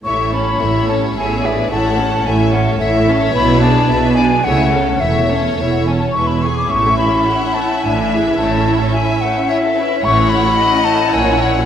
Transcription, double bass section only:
X:1
M:3/4
L:1/8
Q:1/4=108
K:A
V:1 name="Double bass section" clef=bass
A,,,2 A,,,2 A,,,2 | A,,,2 A,,,2 A,,,2 | B,,,2 B,,,2 C,,2 | E,,,2 E,,,2 E,,,2 |
A,,,2 z2 A,,,2 | A,,,2 z4 | [K:F#dor] A,,,2 z2 ^A,,,2 |]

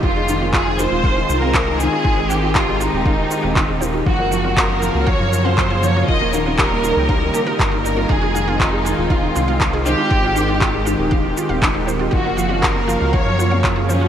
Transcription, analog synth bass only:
X:1
M:4/4
L:1/16
Q:1/4=119
K:Fm
V:1 name="Analog synth bass" clef=bass
F,,,6- F,,, E,,,3 C,,4- C,, z | A,,,6- A,,, E,,,3 z E,,,4- E,,, | _G,,,6- G,,, D,,2 _G,,6- G,, | E,,,6- E,,, D,,3 z2 G,,,4 |
F,,,6- F,,, E,,,3 C,,4- C,, z | A,,,6- A,,, E,,,3 z E,,,4- E,,, | _G,,,6- G,,, D,,2 _G,,6- G,, |]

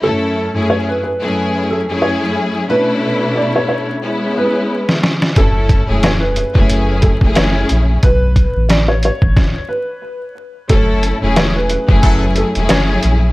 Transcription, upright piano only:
X:1
M:4/4
L:1/16
Q:"Swing 16ths" 1/4=90
K:F#m
V:1 name="Upright piano"
A4 c B B4 A2 c2 z2 | B4 d c c4 B3 z3 | A4 c B B4 A2 c2 z2 | B4 d c c4 B3 z3 |
A4 c B B4 A2 c2 z2 |]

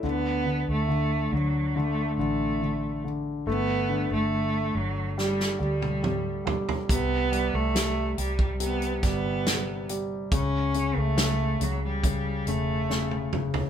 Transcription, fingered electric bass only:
X:1
M:4/4
L:1/16
Q:1/4=70
K:D
V:1 name="Fingered electric bass" clef=bass
D,,3 D,,3 D,,4 A,,,6 | G,,,3 G,,,3 G,,,4 D,,6 | =C,,3 C,,3 C,,4 G,,,6 | C,,3 C,,3 C,,4 E,,,6 |]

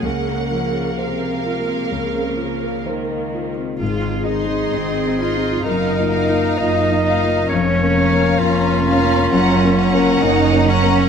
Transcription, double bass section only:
X:1
M:4/4
L:1/8
Q:1/4=65
K:Bbm
V:1 name="Double bass section" clef=bass
z8 | A,,,2 A,,,2 G,,,2 G,,,2 | F,,,2 F,,,2 G,,,2 G,,,2 |]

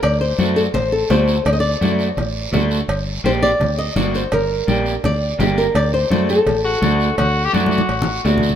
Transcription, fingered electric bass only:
X:1
M:4/4
L:1/8
Q:1/4=168
K:Dphr
V:1 name="Fingered electric bass" clef=bass
D,,2 ^F,,2 A,,,2 D,,2 | D,,2 ^F,,2 A,,,2 D,,2 | G,,,2 B,,,2 D,,2 G,,,2 | G,,,2 B,,,2 D,,2 G,,,2 |
D,,2 ^F,,2 A,,,2 D,,2 | D,,2 ^F,,2 A,,,2 D,,2 |]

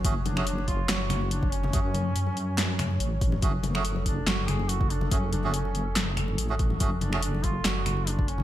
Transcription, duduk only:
X:1
M:4/4
L:1/8
Q:"Swing 16ths" 1/4=142
K:F#m
V:1 name="Duduk"
z D D ^E F2 D C- | C6- C z | z3 D F G F D | C D C2 z4 |
z D D ^E F2 D C |]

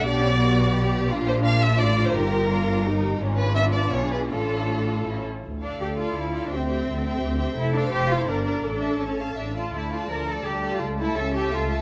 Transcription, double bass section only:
X:1
M:3/4
L:1/8
Q:1/4=169
K:Glyd
V:1 name="Double bass section" clef=bass
B,,,6 | [K:Dm] B,,,4 A,,,2 | G,,,6 | ^G,,,4 =B,,,2 |
A,,,4 A,,, z | D,,2 D,,2 D,,2 | D,,2 D,,2 D,,2 | F,,,2 F,,,2 G,,,2 |
A,,,2 A,,,2 A,,,2 | D,,2 D,,2 D,,2 | ^C,,2 C,,2 C,,2 |]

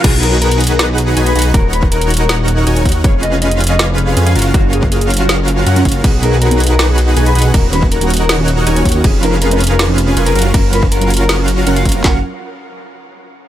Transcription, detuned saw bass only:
X:1
M:4/4
L:1/8
Q:1/4=160
K:F#
V:1 name="Detuned saw bass" clef=bass
B,,,6 B,,, B,,, | D,,,6 D,,, D,, | E,,,6 E,, F,,, | F,,,6 F,, F,,, |
B,,,6 B,,, B,,, | D,,,6 D,,, D,, | E,,,6 E,,, F,,, | F,,,6 F,,, F,,, |
F,,, z6 z |]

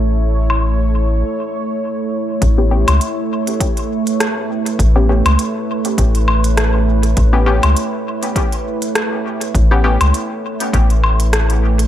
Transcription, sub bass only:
X:1
M:4/4
L:1/16
Q:"Swing 16ths" 1/4=101
K:Amix
V:1 name="Sub bass" clef=bass
A,,,8 z8 | A,,,3 C,, z12 | A,,,3 C,, z4 A,,,8 | A,,,3 C,, z12 |
A,,,3 C,, z4 A,,,8 |]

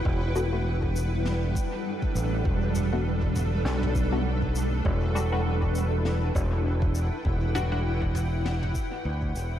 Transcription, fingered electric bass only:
X:1
M:4/4
L:1/8
Q:"Swing 16ths" 1/4=100
K:G
V:1 name="Fingered electric bass" clef=bass
E,,,4- E,,, z2 A,,, | E,,,4 B,,,4 | E,,,4- E,,, E,,,2 z | E,,,4- E,,, z D,, E,,, |]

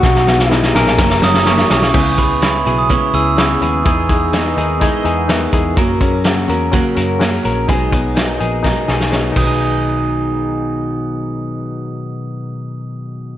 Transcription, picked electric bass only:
X:1
M:4/4
L:1/16
Q:1/4=125
K:B
V:1 name="Picked electric bass" clef=bass
B,,,6 A,,,2 F,,,2 F,,,4 B,,,2 | C,,6 B,,,3 z C,,4 D,,2 | E,,6 D,,3 z E,,4 E,,2 | F,,6 E,,3 z F,,4 A,,,2 |
B,,,6 A,,,3 z B,,,4 B,,,2- | B,,,16- | B,,,16 |]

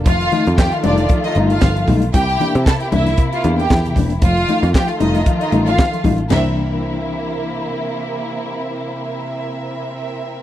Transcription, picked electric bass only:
X:1
M:4/4
L:1/16
Q:"Swing 16ths" 1/4=115
K:Fmix
V:1 name="Picked electric bass" clef=bass
F,,,2 z F,,2 z F,,,2 z2 G,,,2 G,,,2 =B,,,2 | C,,2 z C, z2 C,,2 z2 =E,,2 E,,2 =E,,,2 | F,,,2 z F,, z2 F,,,2 z2 A,,,2 z2 A,,,2 | C,,16- |
C,,16 |]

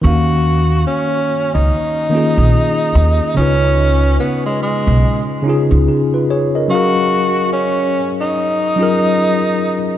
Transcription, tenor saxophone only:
X:1
M:4/4
L:1/16
Q:"Swing 16ths" 1/4=72
K:Ebm
V:1 name="Tenor saxophone"
G4 D3 E8- E | D4 C A, A,3 z6 z | G4 D3 E8- E |]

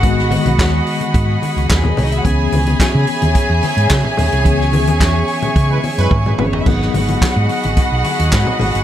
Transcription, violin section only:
X:1
M:4/4
L:1/16
Q:1/4=108
K:G#m
V:1 name="Violin section"
[Ff]12 z/2 [G,G]/2 [A,A]/2 [B,B]/2 [Cc]/2 [Dd]/2 [Ee]/2 [Ff]/2 | [Gg]16- | [Gg]12- [Gg]3/2 z/2 [B,B]/2 [Cc]/2 [Dd]/2 [Ee]/2 | [Ff]16 |]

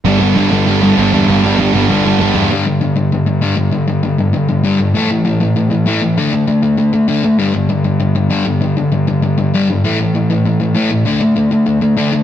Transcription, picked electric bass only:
X:1
M:4/4
L:1/8
Q:1/4=196
K:Glyd
V:1 name="Picked electric bass" clef=bass
G,,, G,,, G,,, G,,, G,,,2 G,,, E,, | G,,, G,,, G,,, G,,, G,,,2 G,,, E,, | z8 | z8 |
z8 | z8 | z8 | z8 |
z8 | z8 |]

